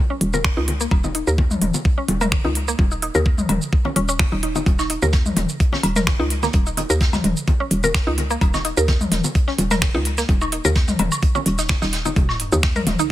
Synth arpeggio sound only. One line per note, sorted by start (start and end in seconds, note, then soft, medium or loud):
0.10 0.16 C#4 loud
0.34 0.37 A#4 loud
0.57 0.62 D#4 loud
0.81 0.84 A#3 loud
1.04 1.07 D#4 medium
1.15 1.19 D#4 medium
1.27 1.31 A#4 loud
1.98 2.03 C#4 loud
2.21 2.25 A#4 loud
2.45 2.50 D#4 loud
2.68 2.72 A#3 loud
2.91 2.95 D#4 medium
3.02 3.06 D#4 medium
3.15 3.18 A#4 loud
3.85 3.91 C#4 loud
3.96 4.00 C#4 loud
4.09 4.12 C#4 loud
4.32 4.37 D#4 medium
4.43 4.47 D#4 medium
4.56 4.58 D#4 medium
4.79 4.83 D#4 medium
4.90 4.94 D#4 medium
5.02 5.06 A#4 loud
5.73 5.78 C#4 loud
5.96 6.00 A#4 loud
6.20 6.25 D#4 loud
6.43 6.47 A#3 loud
6.67 6.70 D#4 medium
6.77 6.81 D#4 medium
6.90 6.93 A#4 loud
7.60 7.66 C#4 loud
7.84 7.87 A#4 loud
8.07 8.12 D#4 loud
8.31 8.34 A#3 loud
8.54 8.57 D#4 medium
8.65 8.69 D#4 medium
8.77 8.81 A#4 loud
9.48 9.53 C#4 loud
9.71 9.75 A#4 loud
9.95 10.00 D#4 loud
10.18 10.22 A#3 loud
10.41 10.45 D#4 medium
10.52 10.56 D#4 medium
10.65 10.68 A#4 loud
11.35 11.40 C#4 loud
11.59 11.61 D#4 medium
11.82 11.86 D#4 loud
12.05 12.11 D#4 medium
12.52 12.56 D#4 medium
12.76 12.81 A#4 loud
12.99 13.01 D#4 loud